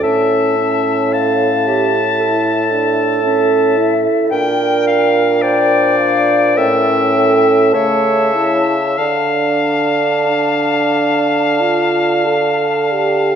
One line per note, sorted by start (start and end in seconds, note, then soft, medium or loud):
0.00 4.02 A2 soft
0.00 0.57 C#4 soft
0.00 1.49 A4 soft
0.00 1.14 E5 soft
0.00 1.10 A5 soft
0.57 1.91 C#4 soft
1.13 1.69 F5 soft
1.13 4.06 A5 soft
1.66 2.00 G4 soft
1.66 3.00 E5 soft
2.20 2.73 E4 soft
2.20 4.29 A4 medium
2.72 3.23 D4 soft
3.23 3.79 C#4 soft
3.23 4.32 E5 soft
3.77 4.33 E4 soft
4.31 6.59 A#2 soft
4.31 6.59 D4 soft
4.31 5.45 A#4 medium
4.31 5.42 G5 soft
4.31 4.83 G5 soft
4.87 5.43 F5 soft
5.42 6.58 C5 medium
5.42 6.59 D5 soft
5.42 5.99 G5 soft
5.99 6.56 F5 soft
6.57 7.76 A2 soft
6.57 7.76 C#4 soft
6.57 7.14 A#4 medium
6.57 7.74 E5 soft
6.57 7.74 G5 soft
7.15 7.75 A4 medium
7.73 8.98 C#3 soft
7.73 8.34 A3 soft
7.73 8.68 C#5 medium
7.73 8.99 E5 soft
7.73 8.96 A5 soft
8.35 8.75 E4 soft
8.96 13.35 D3 soft
8.96 10.11 D4 soft
8.96 13.35 D5 medium
8.96 13.35 F5 soft
8.96 13.35 A5 soft
10.27 11.62 D4 soft
11.60 12.28 F4 soft
12.27 12.93 A4 soft
12.92 13.35 G4 soft